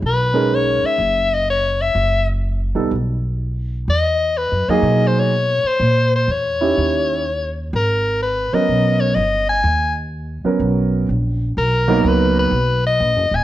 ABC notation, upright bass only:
X:1
M:4/4
L:1/8
Q:"Swing" 1/4=125
K:G#m
V:1 name="Upright bass" clef=bass
B,,,3 z F,,,4 | F,,,3 ^B,,, =B,,,4 | E,,2- (3E,, F,, ^E,, B,,3 z | A,,2 E,,2 D,,4 |
G,,,3 z B,,,2 =G,,,2 | D,,3 z B,,,2 A,,,2 | [K:B] B,,,2 C,,2 B,,,2 (3A,,, F,,, D,,, |]